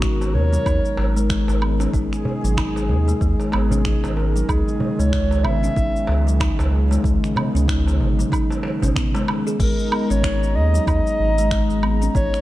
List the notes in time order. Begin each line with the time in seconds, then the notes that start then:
Already playing: G#1 D#3 G#3 F#4 A#4
0.02 D#4, finger snap, kick, shaker
0.21 darbuka tek, shaker
0.34 D#2 C#5, darbuka dum
0.53 F#3, darbuka ka, shaker
0.66 D#2 D#4, kick, low woodblock, shaker
0.85 shaker
0.97 G#1, darbuka ka, darbuka tek
1.16 G#3, shaker
1.30 G#3, finger snap, kick, shaker
1.48 G#1, darbuka tek, shaker
1.62 B3, low woodblock
1.80 C#4, darbuka tek, shaker
1.93 G#1 D#4 G#4, kick, shaker
2.13 finger snap, shaker
2.25 darbuka dum
2.44 G#1 F#3, shaker
2.57 D#4, finger snap, kick, low woodblock, shaker
2.76 darbuka tek, shaker
2.89 D#2, darbuka dum
3.07 G#3, darbuka ka, shaker
3.21 D#2 G#3, kick, shaker
3.40 darbuka ka, shaker
3.52 G#1 B3 G#4, darbuka ka, darbuka tek, low woodblock
3.71 C#4, darbuka dum, shaker
3.85 D#4, finger snap, kick, shaker
4.04 G#1, darbuka tek, shaker
4.17 A#4, darbuka ka
4.36 F#3, shaker
4.49 C#2 C#3 D#4 G#4, kick, low woodblock, shaker
4.68 shaker
4.80 darbuka dum
4.99 C#2 G#3 C#5, shaker
5.13 G#3, finger snap, kick, shaker
5.31 darbuka tek, shaker
5.44 G#1 B3 E5, darbuka dum, low woodblock
5.63 C#4, darbuka ka, shaker
5.76 G#1 D#4, kick, shaker
5.96 shaker
6.07 C#2, darbuka ka, darbuka tek
6.27 F#3, shaker
6.40 D#4, finger snap, kick, low woodblock, shaker
6.59 C#2, darbuka tek, shaker
6.91 G#3, darbuka tek, shaker
7.04 C#2 G#3, kick, shaker
7.24 finger snap, shaker
7.36 B3, darbuka dum, low woodblock
7.55 C#2 C#4, shaker
7.68 D#4, finger snap, kick, shaker
7.86 darbuka ka, darbuka tek, shaker
8.00 G#1, darbuka dum
8.19 F#3, darbuka ka, shaker
8.32 D#4, kick, low woodblock, shaker
8.50 darbuka ka, shaker
8.63 darbuka ka, darbuka tek
8.82 G#1 C#4, darbuka tek, darbuka dum, shaker
8.96 B3, finger snap, kick, shaker
9.15 G#3, darbuka tek, shaker
9.28 G#3, darbuka ka, darbuka tek, low woodblock
9.47 G#4, shaker
9.59 G#1 G#3 D#4 A#4 A#5, kick, crash, shaker
9.79 shaker
9.92 B3, low woodblock
10.10 G#1 C#4 C#5, shaker
10.24 D#4, finger snap, kick, shaker
10.43 shaker
10.55 D#2 D#5
10.74 F#3, shaker
10.87 D#2 D#4 D#5, kick, low woodblock, shaker
11.07 shaker
11.20 G#1
11.38 G#3, shaker
11.51 G#3, finger snap, kick, shaker
11.70 G#1, shaker
11.83 B3, low woodblock
12.02 C#4, shaker
12.15 G#1 D#4 C#5, kick, shaker
12.34 finger snap, shaker